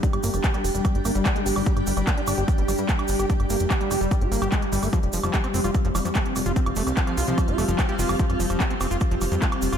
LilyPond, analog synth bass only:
\new Staff \with { instrumentName = "Analog synth bass" } { \clef bass \time 4/4 \key f \dorian \tempo 4 = 147 r16 g,,16 g,,16 f,,16 r8 f,,16 f,,16 r16 g,,16 g,,16 g,,16 r8 g,,16 g,,16 | r16 g,,16 g,,16 g,,16 r8 g,,16 g,,16 r16 g,,16 g,,16 g,16 r8 g,,16 g,,16 | r16 g,,16 g,,16 f,,16 r8 f,,16 f,,16 r16 g,,16 g,,16 g,,16 r8 g,,16 g,,16 | r16 f,,16 f,,16 f,,16 r8 f,,16 f,,16 r16 f,,16 f,,16 f,16 r8 f,,16 f,,16 |
r16 f,,16 f,,16 c,16 r8 c,16 c,16 r16 f,,16 f,,16 f,,16 r8 f,,16 f,,16 | r16 f,,16 f,,16 f,,16 r8 f,,16 f,,16 r16 f,,16 f,,16 f,16 r8 f,,16 f,,16 | }